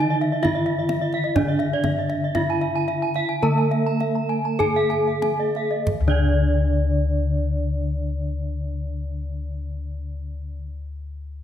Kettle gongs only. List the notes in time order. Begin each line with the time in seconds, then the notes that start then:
Already playing: D3 E4
0.44 D#4
1.36 D4
2.35 D#4
3.43 D3
4.61 D#4
6.01 D2